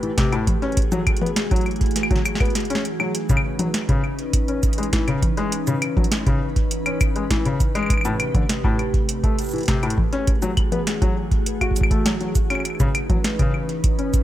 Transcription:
Already playing: C3 A3 G4 B4
0.03 E3, closed hi-hat
0.18 C3, kick, snare, closed hi-hat
0.32 A2, closed hi-hat, claves
0.47 E3 F#4 G#4, kick, closed hi-hat, high tom
0.62 C#4, closed hi-hat
0.72 closed hi-hat
0.77 kick, closed hi-hat
0.92 F#3, closed hi-hat, high tom, shaker
1.07 kick, closed hi-hat, claves
1.17 closed hi-hat
1.21 B3, high tom
1.26 closed hi-hat
1.36 snare, closed hi-hat
1.51 F#3, kick, closed hi-hat
1.56 closed hi-hat
1.66 closed hi-hat, claves
1.71 closed hi-hat
1.76 closed hi-hat
1.81 kick, closed hi-hat
1.86 closed hi-hat
1.91 closed hi-hat
1.96 snare, closed hi-hat
2.03 claves
2.11 F#3, kick, closed hi-hat
2.16 snare
2.25 closed hi-hat, claves, shaker
2.35 snare
2.40 B3, kick, closed hi-hat, claves
2.45 closed hi-hat
2.50 closed hi-hat
2.55 snare, closed hi-hat
2.60 closed hi-hat
2.65 closed hi-hat
2.70 C#4, closed hi-hat
2.75 snare
2.85 closed hi-hat
3.00 F#3, claves
3.15 E3 C#4 D#4 B4, closed hi-hat
3.29 C#3, kick, closed hi-hat, shaker
3.37 claves
3.59 F#3, closed hi-hat, high tom
3.74 snare, closed hi-hat
3.89 C#3, kick, closed hi-hat
4.04 claves
4.19 closed hi-hat
4.33 kick, closed hi-hat
4.48 C#4, closed hi-hat
4.63 kick, closed hi-hat, shaker
4.73 closed hi-hat
4.78 G#3, closed hi-hat
4.83 closed hi-hat
4.93 E3, kick, snare, closed hi-hat
5.08 C#3, closed hi-hat, claves
5.22 kick, closed hi-hat, high tom
5.37 G#3, closed hi-hat
5.52 closed hi-hat
5.67 C#3, closed hi-hat, shaker
5.82 closed hi-hat, claves
5.97 F#3, kick, high tom
6.04 closed hi-hat
6.12 snare, closed hi-hat
6.26 C#3, kick, closed hi-hat
6.56 kick, closed hi-hat
6.71 closed hi-hat
6.86 C#4, closed hi-hat, claves
7.01 kick, closed hi-hat, claves, shaker
7.16 G#3, closed hi-hat
7.30 E3, kick, snare, closed hi-hat
7.45 C#3, closed hi-hat
7.60 kick, closed hi-hat, shaker
7.75 G#3, closed hi-hat, claves
7.79 claves
7.83 claves
7.86 C3 A3 G4, kick, closed hi-hat, claves
7.90 claves
7.94 claves
7.98 claves
8.01 A2, closed hi-hat, claves, shaker
8.20 closed hi-hat, claves
8.34 D3, kick, closed hi-hat, high tom
8.49 snare, closed hi-hat
8.64 A2, kick
8.79 closed hi-hat, claves
8.94 kick, closed hi-hat
9.09 closed hi-hat
9.24 A3, kick, closed hi-hat
9.39 closed hi-hat, shaker
9.41 shaker
9.43 shaker
9.46 shaker
9.48 shaker
9.51 E3, closed hi-hat, shaker
9.56 closed hi-hat
9.58 closed hi-hat
9.61 closed hi-hat
9.63 closed hi-hat
9.66 snare, closed hi-hat
9.68 C3, kick, closed hi-hat
9.83 A2, closed hi-hat, claves
9.90 closed hi-hat
9.98 E3 A3 F#4 G#4, kick, high tom
10.13 C#4, closed hi-hat
10.27 kick, closed hi-hat
10.42 F#3, closed hi-hat, shaker
10.57 kick, closed hi-hat, claves
10.72 B3, closed hi-hat, high tom
10.87 snare, closed hi-hat
11.02 F#3, kick, closed hi-hat
11.31 kick, closed hi-hat
11.46 closed hi-hat
11.61 F#4, kick, closed hi-hat, claves
11.71 kick
11.76 closed hi-hat, shaker
11.81 kick, claves
11.91 A3, kick, closed hi-hat
12.06 F#3, snare, closed hi-hat
12.21 F#3, closed hi-hat
12.35 kick, closed hi-hat, shaker
12.50 C#4, closed hi-hat, claves
12.55 claves
12.60 claves
12.65 C#4 D#4 B4, closed hi-hat, claves
12.70 claves
12.75 claves
12.80 C#3, kick, closed hi-hat, shaker
12.95 closed hi-hat, claves
13.10 F#3, kick, closed hi-hat, high tom
13.24 snare, closed hi-hat
13.39 C#3, kick, closed hi-hat
13.54 claves
13.69 closed hi-hat
13.84 kick, closed hi-hat
13.99 C#4, closed hi-hat
14.14 kick, closed hi-hat, shaker

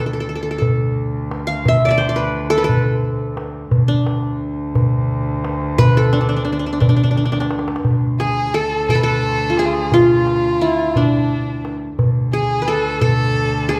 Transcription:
Already playing: D2 B4
0.06 A4
0.13 A4
0.20 A4
0.29 A4
0.35 A4
0.43 A4
0.51 A4
0.58 A4, darbuka dum
1.14 darbuka ka
1.31 darbuka tek
1.47 F5
1.65 E5, darbuka dum
1.85 D5 E5
1.91 D5
1.98 C5, darbuka tek
2.09 D5
2.16 B4
2.50 A4
2.58 B4
2.64 A4
2.69 darbuka dum
3.21 darbuka ka
3.37 darbuka tek
3.71 D2, darbuka dum
3.88 D4
4.07 darbuka tek
4.75 darbuka dum
5.27 darbuka ka
5.45 darbuka tek
5.78 B4, darbuka dum
5.97 A4
6.13 D4, darbuka tek
6.21 D4
6.29 D4
6.36 D4
6.45 D4, darbuka ka
6.52 D4
6.59 D4
6.66 D4
6.73 D4
6.80 D4, darbuka dum
6.89 D4
6.97 D4
7.04 D4
7.11 D4
7.17 D4, darbuka tek
7.25 D4, darbuka ka
7.32 D4, darbuka tek
7.40 D4, darbuka ka
7.51 darbuka tek
7.59 darbuka ka
7.68 darbuka tek
7.76 darbuka ka
7.85 D2, darbuka dum
8.20 G#4, darbuka tek
8.54 A4
8.89 A4, darbuka dum
8.95 B4
9.03 A4
9.41 darbuka ka
9.50 F4
9.57 G#4, darbuka tek
9.65 F4
9.73 G#4
9.92 F4, darbuka dum
10.27 darbuka tek
10.61 E4
10.96 D4, darbuka dum
11.47 darbuka ka
11.65 darbuka tek
11.98 D2, darbuka dum
12.33 G#4
12.62 B4
12.68 A4
13.01 A4, darbuka dum
13.53 darbuka ka
13.69 G#4, darbuka tek

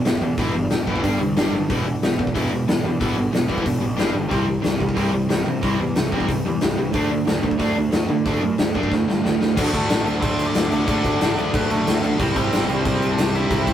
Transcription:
0.05 E1 E2 B2 E3 B3, snare, open hi-hat
0.21 E2 B2 E3 B3
0.37 E1 E2 B2 E3 B3 E4, kick, open hi-hat
0.54 G1 E2 B2 E3 B3
0.70 E1 E2 B2 E3 B3, snare, open hi-hat
0.87 F#1 E2 B2 E3 B3 E4, kick
0.96 kick
1.03 G1 G2 D3 G3 D4 G4, kick, open hi-hat
1.19 C2 G2 D3 G3 D4
1.36 G1 G2 D3 G3 D4 G4, snare, open hi-hat
1.53 F#1 G2 D3 G3 D4
1.69 E1 E2 B2 E3 B3 E4, kick, open hi-hat
1.85 E2 B2 E3 B3
2.02 E1 E2 B2 E3 B3, snare, open hi-hat
2.18 E1 E2 B2 E3 B3, kick
2.27 kick
2.34 E1 E2 B2 E3 B3 E4, kick, open hi-hat
2.51 E1 E2 B2 E3 B3
2.68 E1 E2 B2 E3 B3, snare, open hi-hat
2.83 E2 B2 E3 B3
3.00 E1 E2 B2 E3 B3 E4, kick, open hi-hat
3.16 G1 E2 B2 E3 B3
3.32 E1 E2 B2 E3 B3, snare, open hi-hat
3.47 G1 E2 B2 E3 B3 E4, kick
3.58 kick
3.64 E1 E2 B2 E3 B3, kick, open hi-hat
3.80 A1 E2 B2 E3 B3
3.96 G1 G2 D3 G3 D4 G4, snare, open hi-hat
4.13 G1 G2 D3 G3 D4
4.29 C2 C3 E3 G3 C4, kick, open hi-hat
4.46 C3 E3 G3
4.62 C2 C3 E3 G3, snare, open hi-hat
4.78 C2 C3 E3 G3, kick
4.89 kick
4.95 C2 C3 E3 G3 C4, kick, open hi-hat
5.12 C2 C3 E3 G3
5.29 C2 C3 E3 G3, snare, open hi-hat
5.45 C3 E3 G3
5.63 C2 C3 E3 G3 C4, kick, open hi-hat
5.80 E2 C3 E3 G3
5.95 C2 C3 E3 G3, snare, open hi-hat
6.12 E2 C3 E3 G3 C4, kick
6.20 kick
6.27 C2 C3 E3 G3, kick, open hi-hat
6.45 E2 C3 E3 G3
6.61 C2 C3 E3 G3, snare, open hi-hat
6.77 C2 C3 E3 G3
6.93 D2 D3 A3 D4, kick, open hi-hat
7.11 D3 A3
7.27 D2 D3 A3, snare, open hi-hat
7.43 D2 D3 A3, kick
7.51 kick
7.59 D2 D3 A3 D4, kick, open hi-hat
7.76 D2 D3 A3
7.92 D2 D3 A3, snare, open hi-hat
8.09 D3 A3
8.25 D2 D3 A3 D4, kick, open hi-hat
8.42 F#2 D3 A3
8.58 D2 D3 A3, snare, open hi-hat
8.74 F#2 D3 A3 D4, kick
8.83 kick
8.91 D2 D3 A3, kick, snare
9.08 G2 D3 A3, snare
9.24 D2 D3 A3, snare
9.40 D2 D3 A3, snare
9.56 D2 D3 F#3 A3 D4 F#4, kick, crash
9.73 D2 A3 A4, kick, crash
9.90 A1, snare, crash
10.07 D2, crash
10.21 D2 C4 C5, kick, crash
10.39 crash
10.46 D4 D5
10.55 D2, snare, crash
10.70 D3 F#3 A3 D4 F#4 D5, crash
10.86 D2 D3 F#3 A3 D4 F#4, kick, crash
11.04 D2, kick, crash
11.21 A1, snare, crash
11.38 D2, crash
11.54 D2 B3 B4, kick, crash
11.70 A3 A4, crash
11.87 D2, snare, crash
12.02 D3 F#3 A3 D4 F#4, crash
12.19 C2 C3 G3 C4 E4 G4, kick, crash
12.36 C2 A3 A4, kick, crash
12.53 G1, snare, crash
12.69 C2, crash
12.85 C2 C4 C5, kick, crash
13.02 crash
13.11 D4 D5
13.18 C2, snare, crash
13.35 C3 G3 C4 E4 G4 E5, crash
13.50 C2 C3 G3 C4 E4 G4, kick, crash
13.67 C2, kick, crash

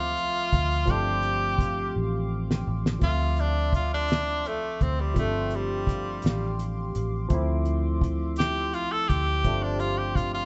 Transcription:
Already playing: D2 F3 A3 C4 F4 E5 C6 D6
0.17 C2, closed hi-hat
0.53 D2, kick, closed hi-hat
0.85 G1 F3 A3 C4 G4 F5 D6, kick, closed hi-hat
0.90 D4 G4
1.22 closed hi-hat
1.58 kick, closed hi-hat
1.96 A1
2.51 snare
2.67 A1
2.86 snare
2.99 D2 F3 A3 C4 F4 E5 D6, kick, closed hi-hat
3.05 E5
3.36 D4, closed hi-hat
3.73 F4, kick, closed hi-hat
3.94 D4
4.08 closed hi-hat
4.12 snare
4.45 C2 A3, closed hi-hat
4.81 D2 C4, kick, closed hi-hat
5.00 G3
5.14 G1 F3 A3 C4 G4 F5 D6, kick, closed hi-hat
5.18 A3 D4
5.50 closed hi-hat
5.55 G3
5.87 kick, closed hi-hat
6.22 A1, closed hi-hat
6.26 snare
6.59 closed hi-hat
6.95 A1, closed hi-hat
7.28 D2 F3 A3 C4 E5, kick, closed hi-hat
7.34 E4
7.65 closed hi-hat
8.01 kick, closed hi-hat
8.36 G4, closed hi-hat
8.40 snare
8.74 C2 F4, closed hi-hat
8.92 A4
9.09 D2 G4, kick, closed hi-hat
9.44 G1 F3 A3 C4 D4 G4 F5 C6, kick, closed hi-hat
9.62 D4
9.79 F4, closed hi-hat
9.98 G4
10.16 F4, kick, closed hi-hat
10.34 F4

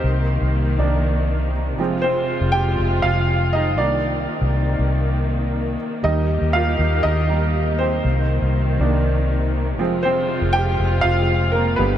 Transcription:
Already playing: C4 C5
0.04 C2 C3 D#3 A#3
0.42 C2
0.78 C2 D#3 A#3 D4
1.78 F1 F3 G#3 C4 F4
2.02 C4 C5
2.41 F1
2.52 G4 G5
2.79 F1
3.02 F1 F4 F5
3.53 D#4 D#5
3.78 C2 C3 D#3 A#3 D4 D5
4.41 C2
4.79 C2
6.03 D#2 D#3 G3 A#3 D#4 G4 D#5
6.42 D#2
6.53 F4 F5
6.79 D#2
7.03 D#2 D#4 D#5
7.29 G3 A#3 D#4
7.79 C4 C5
8.05 C2 C3 D#3
8.42 C2
8.79 C2 D#3 A#3 D4
9.79 F1 F3 G#3 C4 F4
10.03 C4 C5
10.42 F1
10.53 G4 G5
10.80 F1
11.01 F1 F4 F5
11.52 A#3 A#4
11.76 G1 D3 G3 B3 G4 B4

